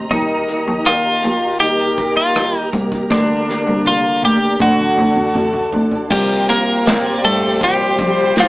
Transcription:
Already playing: G3 A#3 C4 D#4 G4 D#5 A#5
0.09 D#2 D#3 G3 A#3 D#4 G4 A#4, kick, closed hi-hat
0.14 G4
0.48 A#3, cross-stick, closed hi-hat
0.68 D#2
0.84 D#3 F4, cross-stick, closed hi-hat
1.23 D#2 A#3, closed hi-hat
1.60 D#3 G3 A#3 D#4 G4, closed hi-hat
1.79 closed hi-hat
1.97 A#3, kick, closed hi-hat
2.17 F4
2.35 D#3 G3 A#3 D#4 G4, cross-stick, closed hi-hat
2.58 D#4
2.73 C2 A#3, kick, closed hi-hat
2.92 kick
3.10 D2 D3 G3 A#3 D4 D5, kick, snare
3.15 G4
3.48 A#3, snare
3.67 C2
3.85 D3 F4, high tom
4.23 D2 A#3 G4, high tom
4.60 D2 D3 A3 D4 F#4 A4 A5, kick, mid tom
4.65 A4
4.79 mid tom
4.97 D2 D4, mid tom
5.16 mid tom
5.35 A3, mid tom
5.53 floor tom
5.72 D2 D4, floor tom
5.91 floor tom
6.10 C2 C3 F3 G3 A#3 F4 G4 A#4 C5 F5 G5, kick, crash
6.48 A#3 A#4, snare, ride
6.86 A#2 C4 F4 D5, snare, ride
7.24 G2 A3 A4, ride
7.59 C3 F3 A#3 C5, kick, ride
7.63 G3 F4 G4
7.99 F2, kick, ride
8.36 F3 A#3 C4 F4, snare, ride
8.40 F4

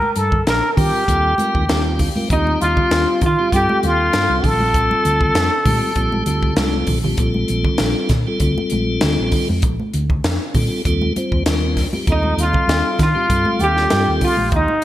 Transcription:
Already playing: A#4
0.02 high conga
0.16 G2 A4, closed hi-hat
0.32 kick, low conga
0.47 A#1 A#4, snare, closed hi-hat
0.76 D#3 G3 C4 F4 G4 A#4, kick, open hi-hat, low conga
0.80 G4
1.08 D#2 G3 C4 F4 A4, kick, closed hi-hat
1.38 G3 C4 F4 A#4, closed hi-hat, high conga
1.55 D#2, kick
1.69 D#2 G3 C4 F4 G4 A5, snare, closed hi-hat
1.86 G5
1.99 F5, kick, open hi-hat, low conga
2.16 G3 C4 F4 A#4, muted fingered electric bass stroke, high conga
2.30 D#2 G3 C4 D#4 F4 G4, kick, closed hi-hat
2.47 high conga
2.61 D#2 F4, closed hi-hat
2.77 kick, low conga
2.91 D#2, snare, closed hi-hat
3.21 D#3 F4, kick, closed hi-hat, low conga
3.26 F4
3.38 G3 C4 F4 G4, muted fingered electric bass stroke
3.52 G2 G3 C4 F4 G4 A4, kick, closed hi-hat
3.69 high conga
3.83 D#2 F4, closed hi-hat, high conga
4.13 G2, snare, closed hi-hat
4.29 C2
4.44 A#1 G3 C4 F4 A4, kick, open hi-hat, low conga
4.60 high conga
4.74 kick, closed hi-hat
4.91 high conga
5.05 D2, closed hi-hat
5.21 kick, low conga
5.35 F2, snare, closed hi-hat
5.65 A#2 G3 C4 F4 G4, kick, open hi-hat, high conga, low conga
5.95 A#1 G3 C4 F4 G4, kick, closed hi-hat
6.12 high conga
6.26 D2 G3 C4 F4 G4, closed hi-hat, high conga
6.43 kick, high conga
6.56 C2 G3 C4 F4 A4, snare, closed hi-hat, high conga
6.73 high conga
6.87 A#1, kick, open hi-hat, low conga
7.04 G3 C4 F4 G4, low conga
7.17 A#1 G3 C4 F4 A4, kick, closed hi-hat
7.34 high conga
7.48 A#1, closed hi-hat
7.64 kick, low conga
7.78 A#1, snare, closed hi-hat
8.09 A#2, kick, snare, closed hi-hat, low conga
8.26 G3 C4 F4 A4, muted fingered electric bass stroke
8.40 D2 G3 C4 F4 A4, kick, closed hi-hat
8.58 high conga
8.70 A#1, closed hi-hat, high conga
9.01 D2, snare, closed hi-hat
9.19 A#1
9.32 kick, open hi-hat, low conga
9.49 F2, high conga
9.62 A#1, kick, closed hi-hat
9.80 high conga
9.93 D2, closed hi-hat
10.10 kick, low conga
10.24 F2, snare, closed hi-hat
10.54 A#2 G3 C4 F4 A4, kick, open hi-hat, low conga
10.85 D#2 G3 C4 F4 A4, kick, closed hi-hat
11.01 high conga
11.16 G3 C4 F4 C5, closed hi-hat, high conga
11.32 D#2, kick
11.46 D#2 G3 C4 F4 A#4, snare, closed hi-hat
11.77 kick, snare, open hi-hat
11.93 G3 C4 F4 G4, muted fingered electric bass stroke, high conga
12.07 D#2 G3 C4 D#4 F4 A4, kick, closed hi-hat
12.12 D#4
12.23 high conga
12.37 D#2 F4, closed hi-hat
12.43 F4
12.53 kick, low conga
12.68 D#2, snare, closed hi-hat
12.99 D#3 F4, kick, snare, closed hi-hat, low conga
13.03 F4
13.15 G3 C4 F4 G4, muted fingered electric bass stroke
13.29 G2 G3 C4 F4 A4, kick, closed hi-hat
13.45 high conga
13.59 D#2 G4, closed hi-hat, high conga
13.64 G4
13.77 snare
13.90 G2, snare, closed hi-hat
14.08 D#2
14.21 F4, kick, open hi-hat, low conga
14.37 A#1, high conga
14.52 D#2 D#4, kick, closed hi-hat
14.56 D#4
14.68 high conga

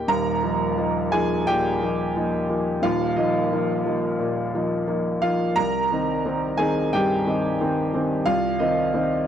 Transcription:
Already playing: D#2 A#2 A#3 D#4 G4 G5
0.08 D#1 D#2 A#4 A#5
0.43 F3 A#3 D#4
0.77 F3 A#3 D#4
1.12 F3 A#3 D#4 G#4 G#5
1.47 A#2 G4 G5
1.82 F3 A#3 D#4
2.16 F3 A#3 D#4
2.49 F3 A#3 D#4
2.82 D#1 D#2 F4 F5
3.16 F3 A#3 D#4 D#5
3.52 F3 A#3 D#4
3.86 F3 A#3 D#4
4.19 A#2
4.54 F3 A#3 D#4
4.87 F3 A#3 D#4
5.22 F3 A#3 D#4 F4 F5
5.56 C2 A#4 A#5
5.91 D#3 C4 D#4
6.26 D#3 C4 D#4
6.57 D#3 C4 D#4 G#4 G#5
6.93 G2 G4 G5
7.27 D#3 C4 D#4
7.61 D#3 C4 D#4
7.94 D#3 C4 D#4
8.26 C2 F4 F5
8.59 D#3 C4 D#4 D#5
8.94 D#3 C4 D#4

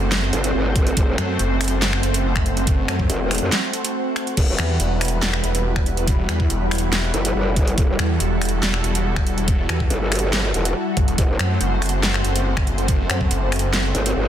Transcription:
Already playing: F#1 A3 C4 F#4 A4 C5 F#5
0.12 snare, clap, closed hi-hat
0.33 G1, closed hi-hat
0.44 closed hi-hat
0.54 G1
0.76 kick, closed hi-hat
0.87 closed hi-hat
0.97 F#1, kick, closed hi-hat
1.08 F#1
1.18 F#2, finger snap, closed hi-hat
1.39 F#1, closed hi-hat
1.61 finger snap, closed hi-hat, open hi-hat
1.68 closed hi-hat
1.82 snare, clap, closed hi-hat
1.93 finger snap
2.03 F#1, closed hi-hat
2.14 closed hi-hat
2.36 finger snap, kick
2.46 closed hi-hat
2.57 closed hi-hat
2.67 kick, closed hi-hat
2.88 F#2, finger snap, closed hi-hat
2.99 kick
3.10 E1, closed hi-hat
3.31 finger snap, closed hi-hat, open hi-hat
3.38 F#2, closed hi-hat
3.52 snare, clap, closed hi-hat
3.73 closed hi-hat
3.85 closed hi-hat
4.16 finger snap, closed hi-hat
4.27 closed hi-hat
4.37 E1 G3 E4 F#4 B4, kick, closed hi-hat, crash
4.47 E1 G3
4.58 E2, finger snap, closed hi-hat
4.80 E1, closed hi-hat
5.01 finger snap, closed hi-hat, open hi-hat
5.08 closed hi-hat
5.22 snare, clap, closed hi-hat
5.33 finger snap
5.44 E1, closed hi-hat
5.55 closed hi-hat
5.76 finger snap, kick
5.86 closed hi-hat
5.97 closed hi-hat
6.08 kick, closed hi-hat
6.29 E2, finger snap, closed hi-hat
6.40 kick
6.50 E1, closed hi-hat
6.71 finger snap, closed hi-hat, open hi-hat
6.78 closed hi-hat
6.93 snare, clap, closed hi-hat
7.14 F#1, closed hi-hat
7.25 closed hi-hat
7.35 F#1
7.56 kick, closed hi-hat
7.68 closed hi-hat
7.78 E1 A4, kick, closed hi-hat
7.89 E1
7.99 E2, finger snap, closed hi-hat
8.20 E1, closed hi-hat
8.42 finger snap, closed hi-hat, open hi-hat
8.49 closed hi-hat
8.63 snare, clap, closed hi-hat
8.74 finger snap
8.84 E1, closed hi-hat
8.95 closed hi-hat
9.16 finger snap, kick
9.27 closed hi-hat
9.38 closed hi-hat
9.48 kick, closed hi-hat
9.69 E2, finger snap, closed hi-hat
9.80 kick
9.90 G1, closed hi-hat
10.12 finger snap, closed hi-hat, open hi-hat
10.19 closed hi-hat
10.33 snare, clap, closed hi-hat
10.54 E1, closed hi-hat
10.65 closed hi-hat
10.97 G1, kick, closed hi-hat
11.08 E1, closed hi-hat
11.18 F#1 A3 C4 A4 C5, kick, closed hi-hat
11.29 F#1
11.39 F#2, finger snap, closed hi-hat
11.61 F#1, closed hi-hat
11.82 finger snap, closed hi-hat, open hi-hat
11.89 closed hi-hat
12.03 snare, clap, closed hi-hat
12.14 finger snap
12.25 F#1, closed hi-hat
12.36 closed hi-hat
12.57 finger snap, kick
12.67 closed hi-hat
12.78 closed hi-hat
12.88 kick, closed hi-hat
13.10 F#2, finger snap, closed hi-hat
13.21 kick
13.31 F#1, closed hi-hat
13.52 finger snap, closed hi-hat, open hi-hat
13.59 closed hi-hat
13.73 snare, clap, closed hi-hat
13.95 G1, closed hi-hat
14.06 closed hi-hat
14.16 G1

